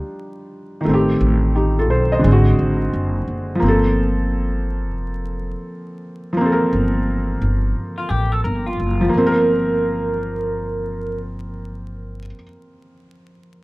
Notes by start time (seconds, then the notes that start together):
Already playing: G3 D4 D#4 F4
0.81 D#3
0.85 A1 A3
0.89 C4
0.94 G4
1.21 A1
1.55 D#4 G4
1.79 F4 A4
1.90 B1 A4 C5
2.12 C5 D#5
2.19 D3
2.23 G#1 G#3
2.28 C4
2.32 F#4
2.59 G#1
2.93 F#1
3.28 F#1
3.55 F3
3.60 G1 A#3
3.64 C4
3.68 A4
4.88 F1
6.33 F3
6.37 A#3
6.41 C4
6.45 A4
6.52 A#4
6.73 G1
7.42 G1
7.98 F4
8.09 A1 G4
8.32 A4
8.44 G1 A#4
8.66 F4
8.80 F#1
9.01 F3
9.09 A#3
9.14 G1 A#4
9.18 C4
9.27 A#4